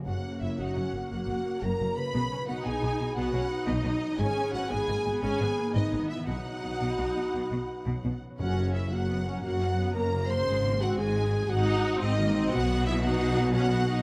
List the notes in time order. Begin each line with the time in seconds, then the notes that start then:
Already playing: F#3 A#3 F#4
0.06 F#1 F#2 A#3 F#4 F#5
0.16 C#3
0.24 A#3
0.33 F#4
0.41 F#1 F#2 E4 C#5 E5
0.51 A#4
0.58 F#1 F#2 D#4 F#4 F#5
0.68 C#6
0.77 F#1 F#2 C#4 F#5
0.94 F#1 F#2 A#3 F#5
1.03 C#6
1.10 F#1 F#2 F#4 F#5
1.28 F#1 F#2 F#5
1.45 A#4
1.54 C#5
1.62 F#1 F#2 F#4 A#4 A#5
1.71 A#3
1.80 F#1 F#2 C#3
1.88 A#3
1.97 C#3 B4 B5
2.06 A#3
2.14 B1 B2 B3
2.24 F#3
2.31 B3 C#4
2.40 D#4
2.48 B1 B2 D#4 F#4 B4 F#5
2.57 D#4
2.65 B1 B2 G#4 D#5 G#5
2.74 B5
2.83 B1 B2 D#5
2.92 B5
3.00 B1 B2 D#5
3.09 B5
3.16 B1 B2 B3 F#4 D#5 F#5
3.26 B5
3.33 B1 B2 C#4 D#5
3.43 B5
3.51 D#4 B4
3.60 D#4
3.67 B1 B2 B3 D#4 D#5
3.77 F#3
3.85 B1 B2 B3
3.94 F#3
4.02 B3
4.11 F#3
4.18 G#1 G#2 C#4 G#4 G#5
4.28 D#3
4.37 B3
4.45 D#4
4.52 G#1 G#2 F#4 B4 F#5
4.62 D#4
4.70 G#1 G#2 B3 G#4 D#5 G#5
4.80 B5
4.88 G#1 G#2 A#3 D#5
5.05 G#1 G#2 B3 D#5
5.14 B5
5.22 G#1 G#2 C#4 G#4 D#5 G#5
5.31 B5
5.40 G#1 G#2 B3 D#5
5.49 B5
5.58 A#3 B4
5.67 D#4
5.75 G#1 G#2 B3 D#4 D#5
5.84 D#3
5.93 G#1 G#2 B3
6.01 D#3
6.10 B3 E4 E5
6.19 D#3
6.27 B1 B2 D#4 F#4 F#5
6.36 F#3
6.45 B3
6.54 D#4
6.63 B1 B2 B4
6.72 D#4
6.80 B1 B2 D#5
6.90 B5
6.98 B1 B2 D#5
7.07 B5
7.15 B1 B2 D#5
7.24 B5
7.33 B1 B2 D#5
7.41 B5
7.50 B1 B2 D#5
7.60 B5
7.68 B4
7.77 D#4
7.86 B1 B2 B3
7.95 F#3
8.04 B1 B2 B3
8.13 F#3
8.22 B3
8.30 F#3
8.39 F#1 F#2 C#4 F#4 F#5
8.48 C#3
8.57 C#4
8.66 F#4
8.74 E4 A#4 E5
8.83 C#5
8.91 F#1 F#2 A#3 F#4 F#5
9.00 A#5
9.09 B3
9.18 A#5
9.26 C#4 F#5
9.35 A#5
9.43 F#1 F#2 A#3 F#4 F#5
9.52 A#5
9.61 C#4 F#5
9.70 A#5
9.77 B3 C#5
9.87 A#4
9.94 F#1 F#2 A#3 F#4 A#4 A#5
10.04 C#4
10.13 C#3
10.21 C#4
10.26 C5 C6
10.31 C#3
10.39 C#4
10.47 G#1 G#2 G#3
10.56 D#3
10.64 A#3 C4
10.73 D#4
10.80 C4 F#4 D#5 F#5
10.90 C5
10.98 G#1 G#2 G#3 G#4 D#5 G#5
11.07 D#6
11.16 D#5
11.25 D#6
11.33 D#5
11.42 D#6
11.49 G#1 G#2 D#4 F#4 D#5 F#5
11.58 D#6
11.67 D#5
11.75 D#6
11.84 C5
11.92 D#5
12.00 G#1 G#2 C4 D#4 D#5
12.10 C4
12.18 D#3 A#3
12.27 C4
12.35 D#3 C4
12.43 C4
12.51 B1 B2 B3 F#4 F#5
12.61 F#3
12.70 B3
12.78 D#4
12.86 E4 D#5 E5
12.95 B4
13.03 D#4 F#4 D#5 F#5
13.20 D#5
13.37 D#5
13.46 D#6
13.53 C#4 F#4 D#5 F#5
13.63 D#6
13.71 B3 D#5
13.80 D#6
13.89 D#4 B4
13.97 D#5